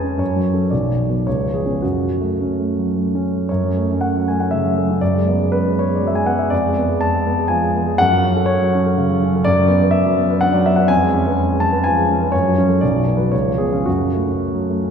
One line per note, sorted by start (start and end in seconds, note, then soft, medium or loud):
0.00 0.16 F2 medium
0.00 0.22 G#3 soft
0.00 0.04 C#4 soft
0.00 0.23 G#4 soft
0.00 0.22 B4 soft
0.00 0.19 C#5 soft
0.00 0.22 G#5 medium
0.00 0.22 A5 medium
0.04 0.20 C#4 soft
0.17 0.69 F#2 soft
0.17 0.71 C#5 medium
0.36 0.64 F#3 soft
0.54 0.70 C#4 soft
0.54 0.70 A4 soft
0.70 1.25 B1 soft
0.70 1.25 D5 medium
0.90 1.19 F#3 soft
1.09 1.25 B3 soft
1.09 1.25 F#4 soft
1.27 1.82 C#2 soft
1.27 1.54 C#5 medium
1.46 1.75 F3 soft
1.54 1.82 G#4 soft
1.66 1.82 B3 soft
1.66 1.82 C#4 soft
1.82 3.46 F#2 soft
1.82 3.22 F#4 soft
2.02 2.32 F#3 soft
2.21 2.51 A3 soft
2.41 2.70 C#4 soft
2.60 2.88 A3 soft
2.78 3.06 F#3 soft
2.96 3.24 A3 soft
3.15 3.43 C#4 soft
3.34 3.50 A3 soft
3.49 4.98 F#2 soft
3.49 4.01 C#5 medium
3.64 3.84 F#3 soft
3.77 3.97 A3 soft
3.91 4.30 C#4 soft
4.01 4.26 F#5 medium
4.16 4.35 F#3 soft
4.28 4.47 A3 soft
4.28 4.39 G#5 soft
4.40 4.60 C#4 soft
4.40 4.52 F#5 soft
4.51 4.72 C#3 soft
4.51 5.01 E5 medium
4.65 4.84 F#3 soft
4.78 4.97 A3 soft
4.91 5.02 C#4 soft
5.01 6.48 F#2 soft
5.01 5.51 D5 medium
5.16 5.35 G#3 soft
5.28 5.47 B3 soft
5.41 5.80 G#4 soft
5.52 5.82 B4 medium
5.64 5.84 G#3 soft
5.76 5.96 B3 soft
5.76 5.96 C#5 medium
5.89 6.09 G#4 soft
5.95 6.08 D5 medium
6.01 6.21 F#3 soft
6.07 6.17 E5 medium
6.13 6.33 G#3 soft
6.13 6.26 G#5 medium
6.26 6.46 B3 soft
6.26 6.38 F#5 medium
6.39 6.52 G#4 soft
6.39 6.51 E5 medium
6.50 7.96 F2 soft
6.50 7.01 D5 medium
6.65 6.85 G#3 soft
6.78 6.98 B3 soft
6.89 7.29 G#4 soft
7.01 7.50 A5 medium
7.14 7.34 G#3 soft
7.27 7.46 B3 soft
7.39 7.58 G#4 soft
7.48 7.70 F3 soft
7.48 7.98 G#5 medium
7.62 7.82 G#3 soft
7.75 7.94 B3 soft
7.86 7.99 G#4 soft
7.98 9.42 F#2 medium
7.98 8.48 F#5 loud
8.11 8.31 F#3 soft
8.24 8.44 C#4 soft
8.37 8.76 A4 soft
8.46 9.44 C#5 medium
8.61 8.81 F#3 soft
8.75 8.94 C#4 soft
8.86 9.05 A4 soft
8.98 9.17 C#3 soft
9.11 9.30 F#3 soft
9.24 9.42 C#4 soft
9.36 9.47 A4 soft
9.45 10.86 F#2 medium
9.45 9.93 D5 medium
9.59 9.77 F#3 soft
9.68 9.88 B3 medium
9.82 10.21 B4 soft
9.91 10.41 E5 medium
10.05 10.25 F#3 soft
10.18 10.38 B3 soft
10.30 10.49 B4 soft
10.41 10.61 D3 soft
10.41 10.53 F#5 medium
10.53 10.73 F#3 soft
10.53 10.65 D5 medium
10.66 10.85 B3 soft
10.66 10.78 E5 medium
10.76 10.90 B4 soft
10.76 10.89 F#5 medium
10.88 12.29 F2 medium
10.88 11.60 G#5 medium
11.03 11.21 G#3 soft
11.15 11.33 C#4 soft
11.26 11.64 B4 soft
11.50 11.69 G#3 soft
11.60 11.80 C#4 soft
11.60 11.84 A5 medium
11.73 11.92 B4 soft
11.84 12.05 F3 soft
11.84 12.32 G#5 medium
11.97 12.16 G#3 soft
12.10 12.28 C#4 soft
12.22 12.33 B4 soft
12.32 12.81 F#2 medium
12.32 12.81 C#5 medium
12.45 12.65 F#3 soft
12.58 12.77 C#4 soft
12.69 12.82 A4 soft
12.81 13.32 B1 soft
12.81 13.19 D5 medium
12.95 13.15 F#3 soft
13.07 13.28 B3 soft
13.17 13.33 F#4 soft
13.17 13.31 B4 soft
13.32 13.85 C#2 soft
13.32 13.59 C#5 medium
13.46 13.67 F3 soft
13.58 13.81 B3 soft
13.58 13.72 G#4 medium
13.72 13.87 C#4 soft
13.72 13.86 F4 soft
13.86 14.91 F#2 soft
13.86 14.91 F#4 medium
14.01 14.23 F#3 soft
14.15 14.36 A3 soft
14.28 14.72 C#4 soft
14.55 14.77 F#3 soft
14.70 14.91 A3 soft
14.83 14.91 C#4 soft